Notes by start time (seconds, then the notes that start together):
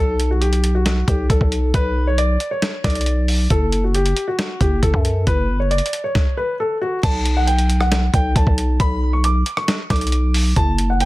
Already playing: B1 A4
0.20 closed hi-hat
0.31 F#4
0.41 G4, closed hi-hat
0.53 closed hi-hat
0.64 closed hi-hat
0.75 F#4
0.86 snare, closed hi-hat
1.08 B1 G4, kick, closed hi-hat
1.30 B1 A4, kick, closed hi-hat
1.41 B1, kick
1.52 closed hi-hat
1.74 B1 B4, kick, closed hi-hat
2.07 C#5
2.18 D5, closed hi-hat
2.40 closed hi-hat
2.51 C#5
2.62 snare, closed hi-hat
2.84 B1 D5, kick, snare, closed hi-hat
2.90 closed hi-hat
2.95 closed hi-hat
3.01 closed hi-hat
3.06 closed hi-hat
3.28 open hi-hat
3.50 F#1 A4, kick, closed hi-hat
3.72 closed hi-hat
3.84 F#4
3.94 G4, closed hi-hat
4.06 closed hi-hat
4.17 closed hi-hat
4.28 F#4
4.39 snare, closed hi-hat
4.61 F#1 G4, kick, closed hi-hat
4.83 F#1 A4, kick, closed hi-hat
4.94 F#2, kick
5.05 closed hi-hat
5.27 F#1 B4, kick, closed hi-hat
5.49 G1
5.60 C#5
5.66 F#1
5.71 D5, closed hi-hat
5.78 closed hi-hat
5.86 closed hi-hat
5.93 closed hi-hat
6.04 C#5
6.15 kick, snare
6.37 B4
6.60 A4
6.81 F#4
7.03 B1 A5, kick, closed hi-hat, crash
7.26 closed hi-hat
7.37 F#5
7.47 G5, closed hi-hat
7.59 closed hi-hat
7.70 closed hi-hat
7.81 F#5, cross-stick
7.92 snare, closed hi-hat
8.14 B1 G5, kick, closed hi-hat
8.36 B1 A5, kick, closed hi-hat
8.47 B1, kick
8.58 closed hi-hat
8.80 B1 B5, kick, closed hi-hat
9.13 C#6
9.24 D6, closed hi-hat
9.46 closed hi-hat
9.57 C#6, cross-stick
9.68 snare, closed hi-hat
9.90 B1 D6, kick, snare, closed hi-hat
9.96 closed hi-hat
10.01 closed hi-hat
10.07 closed hi-hat
10.12 closed hi-hat
10.34 open hi-hat
10.56 F#1 A5, kick, closed hi-hat
10.78 closed hi-hat
10.90 F#5
11.00 G5, closed hi-hat